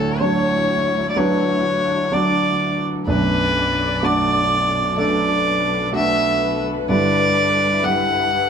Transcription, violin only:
Already playing: A4
0.21 C#5
1.10 D5
1.18 C#5
2.14 D5
3.08 B4
4.05 D5
4.98 D5
5.95 E5
6.90 D5
7.84 F#5

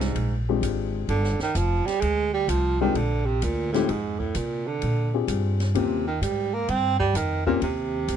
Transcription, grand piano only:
Already playing: G#3 C4 D4 F4 G4
0.49 G#3 C4 D4 F4 G4
2.81 G#3 C4 D4 F4 G4
3.75 G#3 C4 D#4 F4 G4
5.14 C4 D4 F4 G4 G#4
5.75 A#3 C4 C#4 F4 G4
7.47 A#3 C4 C#4 F4 G4

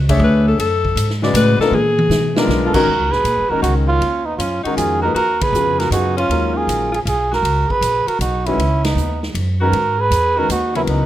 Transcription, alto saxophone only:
0.24 B4
0.48 A4
0.60 A4
1.37 B4
1.61 A4
1.75 G#4
2.65 F4
2.73 F#4
3.11 G#4
3.48 F#4
3.62 D#4
3.88 C#4
4.25 B3
4.37 B3 C#4
4.63 D#4
4.77 F4
5.02 F#4
5.15 F#4
5.42 G#4
5.79 F#4
5.92 D#4
6.17 C#4
6.55 F4
6.92 F4
7.06 F4
7.31 F#4
7.68 G#4
8.07 F#4
8.21 D#4
8.46 C#4
8.85 B3
9.61 F#4
9.98 G#4
10.36 F#4
10.50 D#4
10.75 C#4
10.89 B3

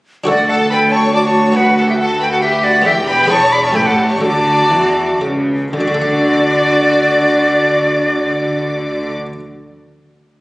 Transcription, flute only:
0.27 D5
0.49 F#5
0.71 G5
0.92 A5
1.14 A5
1.24 A5
1.56 F#5
1.78 F#5
1.89 E5
1.99 F#5
2.21 G5
2.32 F#5
2.42 E5
2.64 D5
2.86 E5
3.08 G5
3.30 A5
3.52 B5
3.64 A5
3.76 G5
3.87 F#5
4.10 A5
4.22 A5
5.74 D5

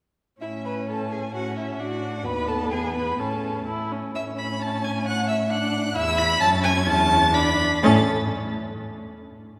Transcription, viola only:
0.42 C#4
1.35 C#4
1.79 D4
2.25 B3
3.20 C#4
3.67 E4
3.92 C#4
4.17 C#4
5.51 D4
5.96 E4
6.42 C#4
7.34 D4
7.83 C#4

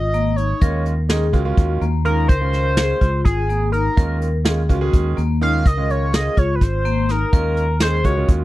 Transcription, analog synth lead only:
Already playing: D#5
0.36 C#5
2.05 A#4
2.28 C5
3.24 G#4
3.72 A#4
5.42 F5
5.67 D#5
5.90 C#5
6.15 D#5
6.38 C#5
6.55 B4
6.63 C5
7.11 A#4
7.82 C5
8.05 C#5

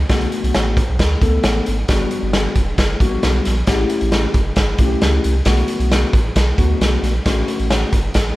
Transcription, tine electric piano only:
0.09 A3 B3 D4 F#4
1.22 A3 B3 D4 A4
1.89 G3 B3 D4 F#4
3.01 G3 A#3 D4 F#4
3.06 B3
3.67 A3 C#4 E4 G4
4.80 A3 C#4 E4 F#4
4.85 G4
5.46 A3 B3 D4 F#4
6.58 A3 B3 D4 F#4
7.26 A3 C#4 D4 F#4

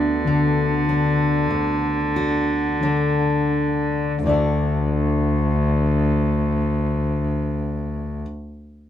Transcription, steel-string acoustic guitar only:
Already playing: D2 D3 B3 D4 F#4
0.27 D3
0.89 D4
1.51 D2
2.16 F#4
2.83 D3 D4
4.25 D2 D3 A3
4.34 F#4

